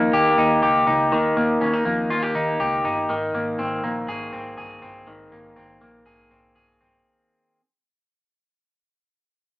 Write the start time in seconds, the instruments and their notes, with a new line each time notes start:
Already playing: clean electric guitar D#3 A#3 D#4
0.13 picked electric bass D#2, clean electric guitar G4
0.38 picked electric bass D#2, clean electric guitar D#4
0.63 picked electric bass C#2, clean electric guitar G4
0.87 picked electric bass C#2, clean electric guitar D#4
1.12 picked electric bass D#2, clean electric guitar D#3
1.37 picked electric bass D#2, clean electric guitar A#3
1.61 picked electric bass D#2, clean electric guitar C#4
1.74 clean electric guitar D#4
1.85 picked electric bass F2, clean electric guitar A#3
2.10 picked electric bass D#2, clean electric guitar F4
2.23 clean electric guitar G4
2.35 picked electric bass D#2, clean electric guitar D#4
2.60 picked electric bass C#2, clean electric guitar G4
2.85 picked electric bass G1, clean electric guitar D#4
3.10 picked electric bass G#1, clean electric guitar D#3
3.34 picked electric bass G#1, clean electric guitar A#3
3.59 picked electric bass G#1, clean electric guitar C4
3.84 picked electric bass A#1, clean electric guitar A#3
4.08 picked electric bass G#1, clean electric guitar G#4
4.33 picked electric bass G#1, clean electric guitar C4
4.58 picked electric bass G1, clean electric guitar G#4
4.82 picked electric bass G1, clean electric guitar C4
5.07 picked electric bass G#1, clean electric guitar D#3
5.32 picked electric bass G#1, clean electric guitar A#3
5.56 picked electric bass G#1, clean electric guitar C4
5.81 picked electric bass A#1, clean electric guitar A#3
6.06 picked electric bass G#1, clean electric guitar G#4
6.31 picked electric bass G#1, clean electric guitar C4
6.56 picked electric bass G1, clean electric guitar G#4
6.81 picked electric bass G1, clean electric guitar C4